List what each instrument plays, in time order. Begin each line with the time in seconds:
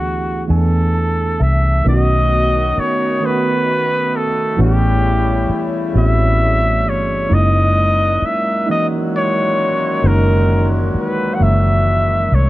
Already playing: fingered electric bass D2, tine electric piano E3 A3 B3 D4 G4 G#4, flugelhorn F#4
0.48 fingered electric bass E2, tine electric piano E3 A3 B3 D4 G#5
0.52 flugelhorn A4
0.95 tine electric piano A5
1.40 fingered electric bass C2, tine electric piano E5, flugelhorn E5
1.84 fingered electric bass B1, tine electric piano D#3 A3 B3 C#4 E4, woodwind section D#3 A3 B3, horn section C#4 D#4 F#4
1.89 flugelhorn D#5
1.94 tine electric piano F#4
2.78 flugelhorn C#5, muted fingered electric bass stroke
3.20 tine electric piano D#3 A3 B3 C#4 F#4
3.26 flugelhorn B4
4.16 flugelhorn A4
4.57 fingered electric bass A1, woodwind section C#3 G3, tine electric piano E3 A3 B3 C#4 F#4, horn section A3 C#4 E4
4.63 flugelhorn G4, tine electric piano G4
5.49 muted fingered electric bass stroke
5.94 fingered electric bass A1, tine electric piano E3 A3 B3 C4 F#4
5.99 tine electric piano C#4, flugelhorn E5
6.87 fingered electric bass G1, flugelhorn C#5
7.29 fingered electric bass F#1, woodwind section A#2 F#3 G#3, tine electric piano G#3 A#3 C#4 D#4 E4
7.34 flugelhorn D#5
8.22 flugelhorn E5, muted fingered electric bass stroke
8.66 horn section D#3 C#4 F#4, tine electric piano E3 G#3 A#3 C#4 D#4
8.71 flugelhorn D#5
9.16 flugelhorn C#5
10.03 fingered electric bass F#1, tine electric piano D#3 G#3 A#3 C#4 D#4
10.07 flugelhorn A#4
10.95 muted fingered electric bass stroke
11.00 flugelhorn B4
11.35 tine electric piano E3, flugelhorn F#5
11.40 fingered electric bass F#1, tine electric piano G#3 A#3 C#4 E5, flugelhorn E5
12.32 fingered electric bass C2, flugelhorn C#5